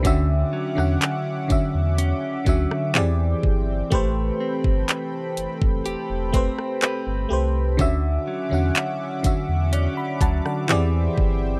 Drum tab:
HH |x---x-x-x-x-x---|x---x-x-x-x-x---|x---x-x-x-x-x---|
CP |----x-------x---|----x-------x---|----x-------x---|
SD |---r-------r----|-----------r----|-----------r----|
BD |o-----o---o---o-|o--o---o--o-----|o-----o---o---o-|